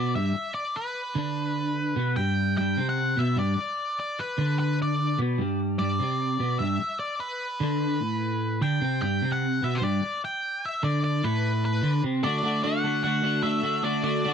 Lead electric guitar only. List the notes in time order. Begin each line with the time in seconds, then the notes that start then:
Already playing: D5
0.16 E5
0.54 D5
0.76 B4
2.16 G5
2.58 G5
2.89 F#5
3.19 E5
3.39 D5
4.00 D5
4.19 B4
4.59 B4
4.82 D5
5.79 D5
6.59 E5
7.00 D5
7.20 B4
8.62 G5
9.02 G5
9.32 F#5
9.64 E5
9.75 C5
9.83 D5
10.25 G5
10.66 E5
10.84 D5
11.04 D5
11.24 B4
11.65 B4
12.24 D5
12.64 F#5
13.04 F#5
13.43 E5
13.84 D5
14.04 D5